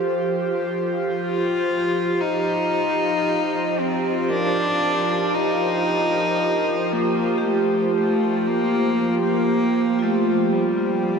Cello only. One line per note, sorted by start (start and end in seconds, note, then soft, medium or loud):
1.14 2.22 F4 medium
2.21 3.81 D#4 medium
3.80 4.31 C4 medium
4.30 5.36 D4 loud
5.34 6.94 D#4 medium
6.92 7.44 A#3 medium
7.43 7.93 A3 medium
7.95 8.48 A3 medium
8.47 9.22 A#3 medium
9.24 10.04 A#3 medium
10.02 10.54 A3 medium
10.53 11.19 G3 medium